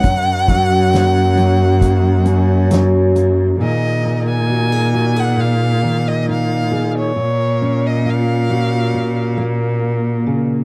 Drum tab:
HH |xxxxxxxx|--------|--------|
SD |--o---o-|--------|--------|
BD |oo--o---|--------|--------|